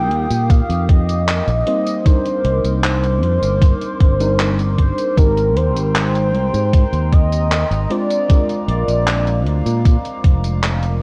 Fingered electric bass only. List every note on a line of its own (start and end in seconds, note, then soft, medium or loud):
0.00 0.11 A#1 medium
0.11 0.26 D#2 loud
0.31 0.60 A#2 medium
0.69 1.40 F2 medium
1.47 1.62 A#1 loud
2.45 2.60 C2 medium
2.64 3.23 C2 medium
3.23 3.38 F2 loud
3.42 3.72 G1 medium
4.01 4.91 G1 medium
5.17 5.56 G#1 loud
5.56 5.76 D#2 medium
5.76 6.34 G#1 medium
6.34 6.49 C2 loud
6.54 6.83 G#2 medium
6.93 7.63 D#2 medium
7.71 7.85 G#1 loud
8.68 8.83 A#1 medium
8.88 9.46 A#1 medium
9.46 9.61 D2 loud
9.66 9.95 A#2 medium
10.24 11.02 F1 medium